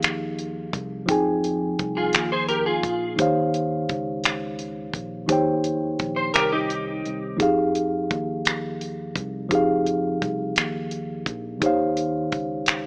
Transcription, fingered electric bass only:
0.00 0.70 D#2 medium
0.74 1.05 C2 medium
1.09 1.75 F2 medium
1.80 2.11 C2 medium
2.15 2.80 D#2 medium
2.84 3.15 A#1 medium
3.19 3.85 D#2 medium
3.90 4.91 C#2 medium
4.94 5.26 A#1 medium
5.30 5.96 D#2 medium
6.01 6.32 A#1 medium
6.36 7.01 C2 medium
7.06 7.41 C2 medium
7.41 8.07 F2 medium
8.11 9.12 D#2 medium
9.16 9.48 C2 medium
9.52 10.17 F2 medium
10.23 10.53 C2 medium
10.57 11.23 D#2 medium
11.27 11.62 A#1 medium
11.62 12.33 D#2 medium
12.33 12.87 C#2 medium

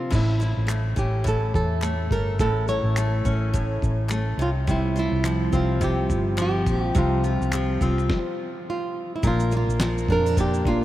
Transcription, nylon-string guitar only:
0.00 0.14 F4 medium
0.15 0.41 E4 medium
0.43 1.00 E4 medium
0.99 1.25 G4 medium
1.28 1.54 A4 medium
1.55 2.12 A4 medium
2.12 2.40 A#4 medium
2.40 2.68 A4 medium
2.69 3.78 C#5 medium
4.42 4.49 F4 medium
4.71 4.98 E4 medium
4.99 5.56 E4 medium
5.55 5.80 F4 medium
5.84 6.36 G4 medium
6.42 6.86 G4 medium
6.86 6.98 F4 medium
6.98 8.64 F4 medium
8.70 9.15 F4 medium
9.16 9.25 E4 medium
9.27 9.55 F4 medium
9.57 10.12 F4 medium
10.12 10.40 A#4 medium
10.40 10.68 G4 medium
10.68 10.85 F4 medium

